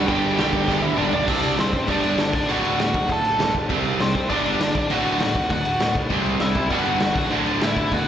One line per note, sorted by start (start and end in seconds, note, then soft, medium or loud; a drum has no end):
0.00 0.96 G2 medium
0.00 0.97 D3 medium
0.00 0.99 G3 loud
0.07 0.20 G1 medium
0.07 0.36 G2 loud
0.07 0.36 D3 loud
0.07 0.35 G3 loud
0.07 0.37 G4 medium
0.07 0.35 G5 loud
0.07 kick loud
0.07 crash medium
0.24 0.35 G1 medium
0.36 0.50 B1 medium
0.36 0.65 G2 medium
0.36 0.65 D3 loud
0.36 0.66 G3 loud
0.36 0.81 G4 medium
0.36 0.84 G5 loud
0.36 snare loud
0.36 crash medium
0.53 0.65 G1 medium
0.53 kick loud
0.66 0.80 G1 medium
0.66 0.97 G2 loud
0.66 0.96 D3 medium
0.66 0.95 G3 loud
0.66 kick medium
0.66 snare medium
0.82 0.95 D2 loud
0.82 0.97 E4 medium
0.82 0.97 E5 medium
0.82 high tom medium
0.96 1.10 G1 loud
0.96 1.12 G2 medium
0.96 1.26 G2 medium
0.96 1.27 D3 loud
0.96 1.13 D3 medium
0.96 1.26 G3 loud
0.96 1.12 D4 medium
0.96 1.12 D5 medium
0.96 mid tom loud
1.01 1.14 G3 medium
1.13 1.26 B1 medium
1.13 1.57 D4 medium
1.13 1.56 D5 medium
1.13 floor tom medium
1.26 1.43 C2 medium
1.26 1.55 C3 medium
1.26 1.55 G3 medium
1.26 1.57 C4 loud
1.26 kick loud
1.26 crash loud
1.26 crash medium
1.43 1.58 C2 medium
1.43 crash medium
1.56 1.73 C2 medium
1.56 1.71 C3 medium
1.56 1.71 G3 medium
1.56 1.87 C4 medium
1.56 snare loud
1.56 crash medium
1.60 1.90 C5 medium
1.73 1.88 A1 medium
1.73 kick medium
1.73 crash medium
1.87 2.03 G1 medium
1.87 2.15 G2 medium
1.87 2.16 D3 medium
1.87 2.18 G3 loud
1.87 2.32 D4 medium
1.87 2.31 D5 medium
1.87 kick medium
1.87 crash medium
2.03 2.18 G1 medium
2.03 crash medium
2.17 2.33 G1 loud
2.17 2.31 G2 medium
2.17 2.32 D3 medium
2.17 snare loud
2.17 crash medium
2.33 2.48 D1 medium
2.33 2.48 D4 medium
2.33 2.50 D5 medium
2.33 kick medium
2.33 crash medium
2.47 2.64 D1 medium
2.47 2.77 D2 medium
2.47 2.78 A2 medium
2.47 2.78 D3 loud
2.47 2.77 F#4 medium
2.47 2.79 F#5 medium
2.47 crash medium
2.65 2.79 D1 medium
2.65 crash medium
2.79 2.94 D1 medium
2.79 2.93 D2 medium
2.79 2.93 A2 medium
2.79 3.08 F#4 medium
2.79 3.11 F#5 medium
2.79 snare loud
2.79 crash medium
2.94 3.09 D1 medium
2.94 kick medium
2.94 crash medium
3.08 3.24 D1 medium
3.08 3.22 D2 medium
3.08 3.22 A2 medium
3.08 3.53 A4 medium
3.08 kick medium
3.08 crash medium
3.12 3.53 A5 medium
3.25 3.39 D1 medium
3.25 crash medium
3.39 3.55 D1 medium
3.39 3.53 D2 medium
3.39 3.53 A2 medium
3.39 snare loud
3.39 crash medium
3.55 3.69 D1 medium
3.55 kick medium
3.55 crash medium
3.69 3.85 C2 medium
3.69 3.98 C3 medium
3.69 3.98 G3 loud
3.69 3.99 C4 loud
3.69 kick medium
3.69 crash medium
3.85 4.00 C2 medium
3.85 crash medium
3.99 4.14 C2 medium
3.99 4.13 C3 medium
3.99 4.13 G3 medium
3.99 4.29 C4 medium
3.99 4.29 C5 medium
3.99 snare loud
3.99 crash medium
4.15 4.29 C2 medium
4.15 kick medium
4.15 crash medium
4.29 4.45 G1 medium
4.29 4.59 G2 medium
4.29 4.59 D3 loud
4.29 4.59 G3 loud
4.29 4.73 D4 medium
4.29 4.76 D5 medium
4.29 kick medium
4.29 crash medium
4.45 4.59 G1 loud
4.45 crash medium
4.60 4.74 G1 loud
4.60 4.74 G2 medium
4.60 4.74 D3 medium
4.60 snare loud
4.60 crash medium
4.75 4.90 D1 medium
4.75 4.91 D4 medium
4.75 4.92 D5 medium
4.75 kick medium
4.75 crash medium
4.90 5.04 D1 medium
4.90 5.19 D2 medium
4.90 5.19 A2 loud
4.90 5.20 D3 loud
4.90 5.19 F#4 medium
4.90 5.22 F#5 loud
4.90 crash medium
5.05 5.19 D1 medium
5.05 crash medium
5.20 5.35 D1 medium
5.20 5.34 D2 medium
5.20 5.34 A2 medium
5.20 5.50 F#4 medium
5.20 5.51 F#5 medium
5.20 snare loud
5.20 crash medium
5.35 5.50 D1 medium
5.35 kick medium
5.35 crash medium
5.50 5.65 D1 medium
5.50 5.64 D2 medium
5.50 5.64 A2 medium
5.50 5.93 F#4 medium
5.50 5.94 F#5 medium
5.50 kick medium
5.50 crash medium
5.65 5.79 D1 medium
5.65 crash medium
5.80 5.95 D1 medium
5.80 5.94 D2 medium
5.80 5.94 A2 medium
5.80 snare loud
5.80 crash medium
5.95 6.10 B1 medium
5.95 kick medium
5.95 crash medium
6.09 6.24 C2 loud
6.09 6.38 C3 medium
6.09 6.55 C3 medium
6.09 6.39 G3 loud
6.09 6.55 G3 medium
6.09 6.40 C4 loud
6.09 kick medium
6.09 crash medium
6.13 6.53 C4 medium
6.24 6.39 C2 medium
6.24 crash medium
6.40 6.55 C2 medium
6.40 6.54 C3 medium
6.40 6.54 G3 medium
6.40 6.70 E4 medium
6.40 6.71 E5 medium
6.40 snare loud
6.40 crash medium
6.54 6.70 C2 medium
6.54 6.68 C3 medium
6.54 6.70 G3 medium
6.54 6.69 C4 medium
6.54 kick medium
6.54 crash medium
6.69 6.85 G1 medium
6.69 7.13 G2 medium
6.69 7.00 G2 medium
6.69 7.15 D3 loud
6.69 7.00 D3 medium
6.69 7.01 G3 medium
6.69 7.16 G3 loud
6.69 7.14 F#4 medium
6.69 7.17 F#5 loud
6.69 kick medium
6.69 crash medium
6.85 7.01 G1 medium
6.85 crash medium
7.00 7.15 G1 medium
7.00 7.15 G2 medium
7.00 7.15 D3 medium
7.00 snare loud
7.00 crash medium
7.14 7.31 D1 medium
7.14 7.59 D2 medium
7.14 7.60 A2 medium
7.14 7.61 D3 loud
7.14 kick loud
7.14 crash medium
7.18 7.31 F#4 medium
7.18 7.31 F#5 medium
7.30 7.46 D1 medium
7.30 7.60 D2 loud
7.30 7.61 A2 medium
7.30 7.61 D3 medium
7.30 crash medium
7.46 7.61 D1 medium
7.46 crash medium
7.60 7.76 D1 medium
7.60 8.08 D2 medium
7.60 7.75 D2 medium
7.60 7.75 A2 medium
7.60 8.08 A2 medium
7.60 8.08 D3 medium
7.60 7.91 E4 medium
7.60 7.94 E5 medium
7.60 snare loud
7.60 crash medium
7.77 7.91 D1 medium
7.77 kick medium
7.77 crash medium
7.92 8.06 D1 medium
7.92 8.05 D2 medium
7.92 8.06 A2 medium
7.92 8.08 F#4 medium
7.92 8.08 F#5 medium
7.92 kick medium
7.92 crash medium